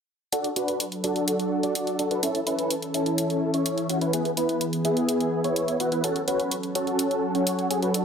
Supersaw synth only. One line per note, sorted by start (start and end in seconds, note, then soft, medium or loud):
0.32 0.50 D4 medium
0.32 0.50 F#4 medium
0.32 0.50 A4 loud
0.56 0.84 D4 medium
0.56 0.84 F#4 medium
0.56 0.84 B4 medium
1.04 1.61 D4 medium
1.04 1.61 F#4 medium
1.04 1.61 A4 medium
1.63 1.96 D4 medium
1.63 1.96 F#4 medium
1.63 1.96 D5 medium
1.99 2.08 D4 medium
1.99 2.08 F#4 medium
1.99 2.08 A4 medium
2.11 2.21 D4 medium
2.11 2.21 F#4 medium
2.11 2.21 B4 loud
2.23 2.40 C#4 medium
2.23 2.40 E4 medium
2.23 2.40 A4 loud
2.47 2.74 C#4 medium
2.47 2.74 E4 medium
2.47 2.74 B4 medium
2.94 3.51 C#4 medium
2.94 3.51 E4 medium
2.94 3.51 A4 medium
3.54 3.87 C#4 medium
3.54 3.87 E4 medium
3.54 3.87 C#5 medium
3.90 3.99 C#4 medium
3.90 3.99 E4 medium
3.90 3.99 F#4 loud
4.01 4.12 C#4 medium
4.01 4.12 E4 medium
4.01 4.12 B4 medium
4.13 4.31 B3 medium
4.13 4.31 E4 medium
4.13 4.31 G#4 loud
4.37 4.65 B3 medium
4.37 4.65 E4 medium
4.37 4.65 B4 medium
4.85 5.41 B3 medium
4.85 5.41 E4 medium
4.85 5.41 G#4 medium
5.44 5.77 B3 medium
5.44 5.77 E4 medium
5.44 5.77 C#5 medium
5.80 5.89 B3 medium
5.80 5.89 E4 medium
5.80 5.89 F#4 medium
5.92 6.02 B3 medium
5.92 6.02 E4 medium
5.92 6.02 B4 loud
6.04 6.21 C#4 medium
6.04 6.21 F#4 medium
6.04 6.21 A4 loud
6.28 6.55 C#4 medium
6.28 6.55 F#4 medium
6.28 6.55 B4 medium
6.75 7.32 C#4 medium
6.75 7.32 F#4 medium
6.75 7.32 A4 medium
7.35 7.68 C#4 medium
7.35 7.68 F#4 medium
7.35 7.68 C#5 medium
7.71 7.80 C#4 medium
7.71 7.80 F#4 medium
7.71 7.80 G#4 medium
7.82 7.93 C#4 medium
7.82 7.93 F#4 medium
7.82 7.93 B4 loud
7.94 8.05 D4 medium
7.94 8.05 F#4 medium
7.94 8.05 A4 loud